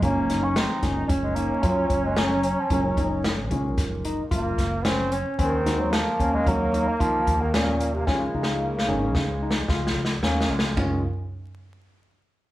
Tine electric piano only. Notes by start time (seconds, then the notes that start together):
0.03 C#4
0.30 D#4
0.83 C#4
1.36 D#4
1.64 F4
2.17 C#4
2.71 C#4
2.97 D#4
3.51 C#4
4.05 D#4
4.31 F4
4.85 C#4
5.39 C#4
5.66 D#4
6.20 C#4
6.74 D#4
7.00 F4
7.54 C#4
8.07 C#4
8.35 D#4
8.88 C#4
9.43 D#4
9.70 F4
10.23 C#4
10.77 C#4